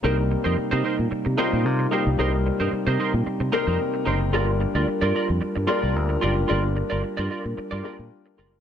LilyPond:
<<
  \new Staff \with { instrumentName = "Clean electric guitar" } { \time 4/4 \key c \minor \tempo 4 = 112 <ees' bes' c''>16 r8 <ees' bes' c''>16 r16 <ees' bes' c''>16 <ees' bes' c''>16 r8. <ees' bes' c''>16 <ees' bes' c''>16 r8 <ees' bes' c''>16 r16 | <ees' bes' c''>16 r8 <ees' bes' c''>16 r16 <ees' bes' c''>16 <ees' bes' c''>16 r8. <ees' bes' c''>16 <ees' bes' c''>16 r8 <ees' bes' c''>16 r16 | <f' bes' d''>16 r8 <f' bes' d''>16 r16 <f' bes' d''>16 <f' bes' d''>16 r8. <f' bes' d''>16 <f' bes' d''>16 r8 <f' bes' d''>16 r16 | <f' bes' d''>16 r8 <f' bes' d''>16 r16 <f' bes' d''>16 <f' bes' d''>16 r8 <f' bes' d''>16 <f' bes' d''>16 r8. <f' bes' d''>16 r16 | }
  \new Staff \with { instrumentName = "Grand piano" } { \time 4/4 \key c \minor <g bes c' ees' bes'>4. r4 <g bes c' ees' f'>4 <g bes c' ees' g'>8 | <g bes c' ees' bes'>4. r4 <g bes c' ees' bes'>4 <g bes c' ees' c''>8 | <g bes d' f' bes'>4. r4 <g bes d' f' bes'>4 <g bes d' f' g'>8 | <g bes d' f' bes'>4. r4 <g bes d' f' bes'>4 <g bes d' f' bes'>8 | }
  \new Staff \with { instrumentName = "Pipe organ" } { \time 4/4 \key c \minor << { <c g ees'>1~ | <c g ees'>1 | <d' bes'>1~ | <d' bes'>1 | } \\ { bes1 | c'1 | f'1~ | f'1 | } >> }
  \new Staff \with { instrumentName = "Fingered electric bass" } { \clef bass \time 4/4 \key c \minor c,8. f,16 r16 c16 r16 bes,16 r16 c16 r16 bes,16 c8 r16 c,16 | c,8. g,16 r16 c16 r16 bes,16 r16 c16 r16 f,16 r8 fis,,8 | g,,8. d,16 r16 g,16 r16 f,16 r16 g,16 r16 c,16 d,8 fis,,8 | g,,8. g,,16 r16 g,16 r16 bes,16 r16 g,16 r16 bes,16 r8 fis,,8 | }
>>